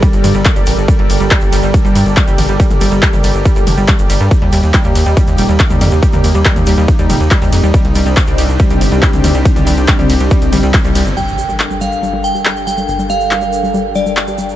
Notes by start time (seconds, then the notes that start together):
Already playing: G3 G4 A4 A#4 D5
0.02 G3, kick, closed hi-hat, shaker
0.13 G1, closed hi-hat, shaker
0.24 G2 G3, open hi-hat, mid tom, ride, shaker
0.34 G1 G3, closed hi-hat, shaker
0.45 kick, clap, closed hi-hat, shaker
0.56 G1 G3, closed hi-hat, shaker
0.66 A1 G3, open hi-hat, ride, shaker
0.78 G1, closed hi-hat, shaker
0.88 G3, kick, closed hi-hat, shaker
0.99 G1 G3, closed hi-hat
1.10 G1, open hi-hat, ride, shaker
1.20 G1 G3, closed hi-hat, shaker
1.31 G3, kick, clap, closed hi-hat, shaker
1.41 G1, closed hi-hat, shaker
1.53 G1 G3, open hi-hat, ride, shaker
1.63 G1 G3, closed hi-hat, shaker
1.74 kick, closed hi-hat, shaker
1.85 G1 G3, closed hi-hat, shaker
1.95 G2 G3, open hi-hat, ride, shaker
2.06 G1, closed hi-hat, shaker
2.17 G3, kick, clap, closed hi-hat, shaker
2.28 G1 G3, closed hi-hat, mid tom, shaker
2.38 A1, open hi-hat, mid tom, ride, shaker
2.49 G1 G3, closed hi-hat, shaker
2.60 G3, kick, closed hi-hat, shaker
2.70 G1, closed hi-hat, mid tom, shaker
2.81 G1 G3, open hi-hat, mid tom, ride, shaker
2.92 G1 G3, closed hi-hat, shaker
3.03 kick, clap, closed hi-hat, shaker
3.13 G1 G3, closed hi-hat, mid tom, shaker
3.24 G1 G3, open hi-hat, ride, shaker
3.35 G1, shaker
3.45 G3, kick, closed hi-hat, shaker
3.56 G1 G3, closed hi-hat, shaker
3.67 F1, open hi-hat, mid tom, ride, shaker
3.78 G1 G3, closed hi-hat, shaker
3.88 kick, clap, closed hi-hat, shaker
3.99 G1, closed hi-hat, shaker
4.10 G1 G3, open hi-hat, ride, shaker
4.20 G2 G3, shaker
4.31 A#3 D#4, kick, closed hi-hat, shaker
4.42 D#2 G3, closed hi-hat
4.52 D#2 G3, open hi-hat, ride, shaker
4.63 D#2, closed hi-hat, shaker
4.74 G3, kick, clap, closed hi-hat, shaker
4.84 D#2 G3, closed hi-hat, shaker
4.95 D#2, open hi-hat, ride, shaker
5.06 D#2 G3, closed hi-hat, shaker
5.17 G3, kick, closed hi-hat, shaker
5.27 D#2, closed hi-hat, shaker
5.38 D#1 G3, open hi-hat, ride, shaker
5.49 D#2 G3, closed hi-hat, shaker
5.60 kick, clap, closed hi-hat, shaker
5.70 D#2 G3, closed hi-hat, mid tom, shaker
5.81 F2 G3, open hi-hat, mid tom, ride, shaker
5.91 D#2, closed hi-hat, shaker
6.03 G3, kick, closed hi-hat, shaker
6.13 D#2 G3, closed hi-hat, mid tom, shaker
6.24 D#2, open hi-hat, mid tom, ride, shaker
6.35 D#2 G3, closed hi-hat, shaker
6.45 G3, kick, clap, closed hi-hat, shaker
6.56 D#2, closed hi-hat, mid tom, shaker
6.66 D#2 G3, open hi-hat, ride, shaker
6.78 D#2 G3, closed hi-hat, shaker
6.88 kick, closed hi-hat, shaker
6.99 D#2 G3, closed hi-hat, shaker
7.10 D#1 G3, open hi-hat, mid tom, ride, shaker
7.20 D#2, closed hi-hat, shaker
7.31 G3, kick, clap, closed hi-hat, shaker
7.42 D#2 G3, closed hi-hat, shaker
7.53 F2, open hi-hat, ride, shaker
7.63 D#2 G3, closed hi-hat, shaker
7.74 C3 G3 C4 D4 G4, kick, closed hi-hat, shaker
7.85 C2, closed hi-hat
7.95 C2 G3, open hi-hat, ride, shaker
8.06 C2 G3, closed hi-hat, shaker
8.17 kick, clap, closed hi-hat, shaker
8.27 C2 G3, closed hi-hat, shaker
8.38 C2 G3, open hi-hat, ride, shaker
8.49 C2, closed hi-hat, shaker
8.59 G3, kick, closed hi-hat, shaker
8.70 C2 G3, closed hi-hat, shaker
8.81 G1, open hi-hat, ride, shaker
8.92 C2 G3, shaker
9.03 G3, kick, clap, closed hi-hat, shaker
9.13 C2, closed hi-hat, mid tom, shaker
9.24 D2 G3, open hi-hat, mid tom, ride, shaker
9.35 C2 G3, closed hi-hat, shaker
9.45 kick, closed hi-hat, shaker
9.56 C2 G3, closed hi-hat, mid tom, shaker
9.67 C2 G3, open hi-hat, mid tom, ride, shaker
9.77 C2, closed hi-hat, shaker
9.88 G3, kick, clap, closed hi-hat, shaker
9.99 C2 G3, closed hi-hat, mid tom, shaker
10.09 C2, open hi-hat, ride, shaker
10.20 C2 G3, closed hi-hat, shaker
10.30 G3, kick, closed hi-hat, shaker
10.42 C2, closed hi-hat, shaker
10.53 A#1 G3, open hi-hat, mid tom, ride, shaker
10.63 C2 G3, closed hi-hat, shaker
10.74 kick, clap, closed hi-hat, shaker
10.84 C2 G3, closed hi-hat, shaker
10.95 C2 G3, open hi-hat, ride, shaker
11.06 G1, closed hi-hat, shaker
11.17 G1 G3 D4 A4 A#4 G5, impact, shaker
11.28 shaker
11.38 G3, shaker
11.49 G3, shaker
11.60 clap, shaker
11.70 G3, shaker
11.81 G3 F5, shaker
11.92 shaker
12.03 G3, shaker
12.13 G3
12.24 G5, shaker
12.35 G3, shaker
12.45 G3, clap, shaker
12.56 shaker
12.67 G3 G5, shaker
12.77 G3, shaker
12.88 G1, shaker
12.99 G3, shaker
13.10 G3 F5, shaker
13.20 shaker
13.31 G3, clap, shaker
13.41 G3, shaker
13.53 shaker
13.63 G3, shaker
13.74 G3, shaker
13.95 G3 D5, shaker
14.06 G3, shaker
14.17 clap, shaker
14.27 G3, shaker
14.38 G3, shaker
14.49 shaker